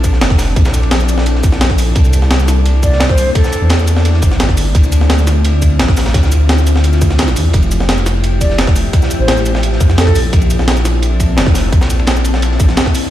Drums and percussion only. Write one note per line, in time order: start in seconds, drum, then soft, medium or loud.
0.04 kick medium
0.04 closed hi-hat medium
0.04 ride medium
0.04 cabasa medium
0.13 snare soft
0.21 snare loud
0.21 closed hi-hat medium
0.21 ride medium
0.30 kick loud
0.30 snare soft
0.38 snare loud
0.38 open hi-hat medium
0.38 ride medium
0.38 cabasa medium
0.47 ride soft
0.56 kick loud
0.56 closed hi-hat medium
0.56 ride medium
0.65 snare loud
0.65 ride medium
0.65 cabasa soft
0.74 closed hi-hat medium
0.74 ride soft
0.74 cabasa medium
0.83 ride medium
0.91 snare loud
0.91 closed hi-hat medium
0.91 ride loud
1.00 cabasa soft
1.09 closed hi-hat medium
1.09 ride medium
1.09 cabasa medium
1.18 snare soft
1.18 snare medium
1.26 closed hi-hat medium
1.26 ride medium
1.35 snare soft
1.43 kick loud
1.43 closed hi-hat medium
1.43 ride medium
1.43 cabasa medium
1.52 snare soft
1.61 snare loud
1.61 closed hi-hat medium
1.61 ride medium
1.70 kick medium
1.70 snare soft
1.70 ride soft
1.78 open hi-hat medium
1.78 ride medium
1.78 cabasa medium
1.95 kick loud
1.95 closed hi-hat medium
1.95 ride medium
2.05 ride soft
2.05 cabasa soft
2.13 closed hi-hat medium
2.13 ride medium
2.13 cabasa medium
2.22 snare soft
2.31 snare loud
2.31 closed hi-hat medium
2.31 ride medium
2.40 cabasa soft
2.48 snare medium
2.48 closed hi-hat medium
2.48 ride medium
2.48 cabasa medium
2.66 closed hi-hat medium
2.66 ride medium
2.83 kick medium
2.83 closed hi-hat medium
2.83 ride medium
2.83 cabasa medium
2.92 snare soft
3.00 snare loud
3.00 closed hi-hat medium
3.00 ride medium
3.09 kick loud
3.09 snare soft
3.18 open hi-hat medium
3.18 ride medium
3.18 cabasa medium
3.35 kick loud
3.35 closed hi-hat medium
3.35 ride medium
3.44 snare medium
3.44 cabasa soft
3.52 closed hi-hat medium
3.52 ride medium
3.52 cabasa medium
3.69 snare loud
3.69 closed hi-hat medium
3.69 ride loud
3.79 cabasa soft
3.87 closed hi-hat medium
3.87 ride medium
3.87 cabasa medium
3.96 snare medium
3.96 snare soft
4.05 closed hi-hat medium
4.05 ride medium
4.13 snare soft
4.22 kick loud
4.22 closed hi-hat medium
4.22 ride medium
4.22 cabasa medium
4.31 snare soft
4.40 snare loud
4.40 closed hi-hat loud
4.40 ride medium
4.49 kick medium
4.49 snare soft
4.49 ride soft
4.57 open hi-hat medium
4.57 ride medium
4.57 cabasa medium
4.75 kick loud
4.75 closed hi-hat loud
4.75 ride medium
4.83 ride soft
4.83 cabasa soft
4.92 closed hi-hat medium
4.92 ride medium
4.92 cabasa medium
5.01 snare soft
5.09 snare loud
5.09 closed hi-hat medium
5.09 ride medium
5.19 cabasa soft
5.27 snare medium
5.27 closed hi-hat medium
5.27 ride medium
5.27 cabasa medium
5.45 closed hi-hat loud
5.45 ride medium
5.62 kick medium
5.62 closed hi-hat medium
5.62 ride medium
5.62 cabasa medium
5.79 snare loud
5.79 closed hi-hat medium
5.79 ride medium
5.88 kick loud
5.88 snare soft
5.97 snare loud
5.97 open hi-hat medium
5.97 ride medium
5.97 cabasa medium
6.06 snare loud
6.06 ride medium
6.14 kick loud
6.14 snare loud
6.14 closed hi-hat loud
6.14 ride medium
6.23 snare medium
6.23 cabasa soft
6.32 closed hi-hat medium
6.32 ride medium
6.32 cabasa medium
6.49 snare loud
6.49 closed hi-hat medium
6.49 ride medium
6.58 cabasa soft
6.67 closed hi-hat medium
6.67 ride medium
6.67 cabasa medium
6.76 snare soft
6.76 snare medium
6.84 closed hi-hat loud
6.84 ride medium
6.93 snare soft
6.93 cabasa soft
7.01 kick loud
7.01 closed hi-hat medium
7.01 ride medium
7.01 cabasa medium
7.11 snare soft
7.18 snare loud
7.18 closed hi-hat medium
7.18 ride medium
7.28 snare soft
7.28 ride soft
7.28 cabasa soft
7.36 open hi-hat medium
7.36 ride medium
7.36 cabasa medium
7.53 kick loud
7.53 closed hi-hat loud
7.53 ride medium
7.62 ride soft
7.62 cabasa soft
7.71 closed hi-hat medium
7.71 ride medium
7.71 cabasa medium
7.80 snare soft
7.89 snare loud
7.89 closed hi-hat medium
7.89 ride medium
7.98 cabasa soft
8.06 snare medium
8.06 closed hi-hat medium
8.06 ride medium
8.06 cabasa medium
8.24 closed hi-hat medium
8.24 ride medium
8.41 kick medium
8.41 closed hi-hat medium
8.41 ride medium
8.41 cabasa medium
8.50 snare soft
8.58 snare loud
8.58 closed hi-hat loud
8.58 ride medium
8.67 kick loud
8.67 snare soft
8.75 open hi-hat medium
8.75 ride medium
8.75 cabasa medium
8.93 kick loud
8.93 closed hi-hat loud
8.93 ride medium
9.02 snare medium
9.02 cabasa soft
9.10 closed hi-hat medium
9.10 ride medium
9.10 cabasa medium
9.28 snare loud
9.28 closed hi-hat medium
9.28 ride medium
9.37 cabasa soft
9.46 closed hi-hat medium
9.46 ride medium
9.46 cabasa medium
9.55 snare soft
9.55 snare medium
9.63 closed hi-hat medium
9.63 ride medium
9.73 snare soft
9.80 kick loud
9.80 closed hi-hat medium
9.80 ride medium
9.80 cabasa medium
9.90 snare soft
9.98 snare loud
9.98 closed hi-hat medium
9.98 ride medium
10.07 kick medium
10.07 snare soft
10.07 ride soft
10.15 open hi-hat medium
10.15 ride medium
10.15 cabasa medium
10.33 kick loud
10.33 closed hi-hat medium
10.33 ride loud
10.41 ride soft
10.41 cabasa soft
10.50 closed hi-hat medium
10.50 ride medium
10.50 cabasa medium
10.59 snare soft
10.68 snare loud
10.68 closed hi-hat medium
10.68 ride medium
10.77 cabasa soft
10.85 snare medium
10.85 closed hi-hat medium
10.85 ride medium
10.85 cabasa medium
11.02 closed hi-hat medium
11.02 ride medium
11.20 kick medium
11.20 closed hi-hat medium
11.20 ride medium
11.20 cabasa medium
11.37 snare loud
11.37 closed hi-hat medium
11.37 ride medium
11.46 kick loud
11.46 snare soft
11.54 snare loud
11.54 open hi-hat medium
11.54 ride medium
11.54 cabasa medium
11.63 ride soft
11.72 kick loud
11.72 closed hi-hat medium
11.72 ride medium
11.81 snare loud
11.81 ride medium
11.81 cabasa soft
11.90 closed hi-hat medium
11.90 ride soft
11.90 cabasa medium
11.99 ride medium
12.07 snare loud
12.07 closed hi-hat medium
12.07 ride medium
12.16 cabasa soft
12.24 closed hi-hat medium
12.24 ride medium
12.24 cabasa medium
12.34 snare medium
12.34 snare soft
12.42 closed hi-hat medium
12.42 ride medium
12.52 snare soft
12.60 kick loud
12.60 closed hi-hat medium
12.60 ride medium
12.60 cabasa medium
12.69 snare soft
12.77 snare loud
12.77 closed hi-hat medium
12.77 ride medium
12.86 kick medium
12.86 snare soft
12.86 ride soft
12.95 open hi-hat medium
12.95 ride medium
12.95 cabasa medium